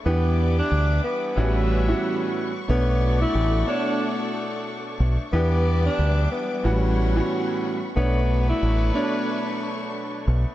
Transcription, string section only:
0, 0, Header, 1, 2, 480
1, 0, Start_track
1, 0, Key_signature, 2, "minor"
1, 0, Tempo, 659341
1, 38, Time_signature, 4, 2, 24, 8
1, 7680, End_track
2, 0, Start_track
2, 0, Title_t, "String section"
2, 0, Program_c, 0, 48
2, 40, Note_on_c, 0, 86, 87
2, 41, Note_on_c, 0, 55, 78
2, 41, Note_on_c, 0, 76, 72
2, 989, Note_off_c, 0, 86, 0
2, 990, Note_off_c, 0, 76, 0
2, 992, Note_on_c, 0, 78, 71
2, 992, Note_on_c, 0, 83, 70
2, 992, Note_on_c, 0, 85, 92
2, 1940, Note_off_c, 0, 55, 0
2, 1945, Note_off_c, 0, 78, 0
2, 1945, Note_off_c, 0, 83, 0
2, 1962, Note_on_c, 0, 62, 78
2, 1962, Note_on_c, 0, 69, 86
2, 3846, Note_off_c, 0, 85, 0
2, 3860, Note_off_c, 0, 69, 0
2, 3861, Note_off_c, 0, 62, 0
2, 3869, Note_on_c, 0, 55, 82
2, 3869, Note_on_c, 0, 76, 73
2, 3869, Note_on_c, 0, 86, 85
2, 4823, Note_off_c, 0, 86, 0
2, 4824, Note_off_c, 0, 76, 0
2, 4846, Note_on_c, 0, 78, 65
2, 4848, Note_on_c, 0, 83, 66
2, 4848, Note_on_c, 0, 85, 84
2, 5774, Note_off_c, 0, 55, 0
2, 5792, Note_off_c, 0, 78, 0
2, 5793, Note_off_c, 0, 83, 0
2, 5793, Note_off_c, 0, 85, 0
2, 5805, Note_on_c, 0, 69, 79
2, 5806, Note_on_c, 0, 62, 75
2, 5807, Note_on_c, 0, 85, 89
2, 7680, Note_off_c, 0, 62, 0
2, 7680, Note_off_c, 0, 69, 0
2, 7680, Note_off_c, 0, 85, 0
2, 7680, End_track
0, 0, End_of_file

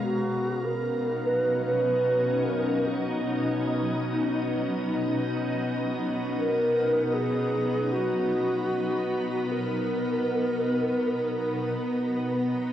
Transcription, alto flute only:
0, 0, Header, 1, 2, 480
1, 0, Start_track
1, 0, Tempo, 500000
1, 12219, End_track
2, 0, Start_track
2, 0, Title_t, "Alto flute"
2, 0, Program_c, 0, 73
2, 34, Note_on_c, 0, 66, 95
2, 623, Note_on_c, 0, 70, 98
2, 637, Note_off_c, 0, 66, 0
2, 1207, Note_on_c, 0, 71, 96
2, 1221, Note_off_c, 0, 70, 0
2, 1582, Note_off_c, 0, 71, 0
2, 1588, Note_on_c, 0, 71, 100
2, 2350, Note_on_c, 0, 70, 94
2, 2364, Note_off_c, 0, 71, 0
2, 2762, Note_on_c, 0, 63, 85
2, 2776, Note_off_c, 0, 70, 0
2, 5025, Note_off_c, 0, 63, 0
2, 6137, Note_on_c, 0, 70, 105
2, 6853, Note_on_c, 0, 68, 104
2, 6868, Note_off_c, 0, 70, 0
2, 7609, Note_on_c, 0, 66, 104
2, 7624, Note_off_c, 0, 68, 0
2, 9134, Note_on_c, 0, 70, 102
2, 9149, Note_off_c, 0, 66, 0
2, 11858, Note_off_c, 0, 70, 0
2, 12219, End_track
0, 0, End_of_file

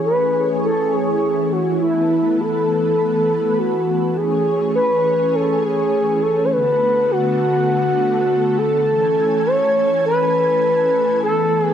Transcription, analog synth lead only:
0, 0, Header, 1, 2, 480
1, 0, Start_track
1, 0, Key_signature, 3, "major"
1, 0, Tempo, 588235
1, 1481, Time_signature, 4, 2, 24, 8
1, 9577, End_track
2, 0, Start_track
2, 0, Title_t, "Analog synth lead"
2, 0, Program_c, 0, 81
2, 42, Note_on_c, 0, 71, 94
2, 489, Note_off_c, 0, 71, 0
2, 523, Note_on_c, 0, 69, 94
2, 762, Note_on_c, 0, 68, 101
2, 774, Note_off_c, 0, 69, 0
2, 1243, Note_on_c, 0, 66, 86
2, 1255, Note_off_c, 0, 68, 0
2, 1477, Note_off_c, 0, 66, 0
2, 1482, Note_on_c, 0, 64, 93
2, 1961, Note_on_c, 0, 69, 104
2, 1973, Note_off_c, 0, 64, 0
2, 2922, Note_on_c, 0, 66, 96
2, 2935, Note_off_c, 0, 69, 0
2, 3399, Note_on_c, 0, 68, 106
2, 3411, Note_off_c, 0, 66, 0
2, 3875, Note_off_c, 0, 68, 0
2, 3880, Note_on_c, 0, 71, 100
2, 4362, Note_on_c, 0, 69, 100
2, 4374, Note_off_c, 0, 71, 0
2, 4602, Note_on_c, 0, 68, 109
2, 4614, Note_off_c, 0, 69, 0
2, 5080, Note_on_c, 0, 69, 99
2, 5093, Note_off_c, 0, 68, 0
2, 5260, Note_on_c, 0, 73, 82
2, 5272, Note_off_c, 0, 69, 0
2, 5317, Note_on_c, 0, 71, 116
2, 5329, Note_off_c, 0, 73, 0
2, 5802, Note_on_c, 0, 66, 114
2, 5814, Note_off_c, 0, 71, 0
2, 6999, Note_on_c, 0, 69, 114
2, 7011, Note_off_c, 0, 66, 0
2, 7721, Note_on_c, 0, 73, 111
2, 7733, Note_off_c, 0, 69, 0
2, 8198, Note_off_c, 0, 73, 0
2, 8203, Note_on_c, 0, 71, 119
2, 9129, Note_off_c, 0, 71, 0
2, 9163, Note_on_c, 0, 69, 109
2, 9482, Note_off_c, 0, 69, 0
2, 9482, Note_on_c, 0, 68, 109
2, 9577, Note_off_c, 0, 68, 0
2, 9577, End_track
0, 0, End_of_file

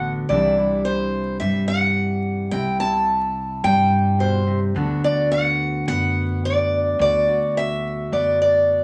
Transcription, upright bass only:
0, 0, Header, 1, 2, 480
1, 0, Start_track
1, 0, Tempo, 559180
1, 246, Time_signature, 4, 2, 24, 8
1, 7587, End_track
2, 0, Start_track
2, 0, Title_t, "Upright bass"
2, 0, Program_c, 0, 32
2, 0, Note_on_c, 0, 33, 75
2, 220, Note_off_c, 0, 33, 0
2, 256, Note_on_c, 0, 36, 95
2, 1176, Note_off_c, 0, 36, 0
2, 1209, Note_on_c, 0, 43, 84
2, 2133, Note_off_c, 0, 43, 0
2, 2163, Note_on_c, 0, 36, 87
2, 3089, Note_off_c, 0, 36, 0
2, 3123, Note_on_c, 0, 43, 96
2, 4050, Note_off_c, 0, 43, 0
2, 4084, Note_on_c, 0, 38, 94
2, 5011, Note_off_c, 0, 38, 0
2, 5044, Note_on_c, 0, 42, 93
2, 5972, Note_off_c, 0, 42, 0
2, 6003, Note_on_c, 0, 38, 97
2, 6933, Note_off_c, 0, 38, 0
2, 6973, Note_on_c, 0, 42, 84
2, 7587, Note_off_c, 0, 42, 0
2, 7587, End_track
0, 0, End_of_file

